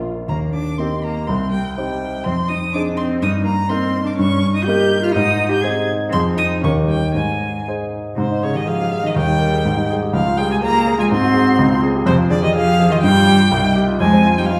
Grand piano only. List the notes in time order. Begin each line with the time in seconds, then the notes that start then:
Already playing: A#1 A#3
0.02 F4
0.15 A#4
0.28 D#2
0.79 A#3 D#4 G4
1.28 C2
1.78 C4 D#4 G4
2.26 F2
2.75 C4 D#4 G#4
3.22 G2
3.70 A#3 D#4 A#4
4.19 G2
4.68 A#3 D#4 A#4
5.16 G#2
5.64 C4 D#4 G#4
6.14 F2 C4 F4 G#4
6.63 D#2 D#4 G4 A#4
7.15 G#2
7.68 D#4 G#4 C5
8.18 G#2
8.31 D#4
8.43 G#4
8.55 G4
8.68 G#4
8.79 G4
8.92 G#4
9.04 D#4
9.16 D#2
9.27 D#4
9.40 A#4
9.52 G#4
9.65 G#2
9.77 D#4
9.90 G#4
10.02 G4
10.13 C#2
10.26 F4
10.38 G#4
10.51 G4
10.63 G#4
10.75 G4
10.87 G#4
10.98 F4
11.11 G#2
11.22 F#4
11.34 G#4
11.47 F#4
11.59 C#2
11.71 F4
11.83 G#4
11.95 G4
12.06 F2
12.18 F4
12.30 G#4
12.42 G4
12.55 G#4
12.67 G4
12.80 G#4
12.92 F4
13.04 G2
13.15 F4
13.26 G4
13.38 F4
13.51 C2
13.64 D#4
13.76 G4
13.88 F4
14.00 F2
14.13 C4
14.26 F4
14.37 D#4
14.51 F4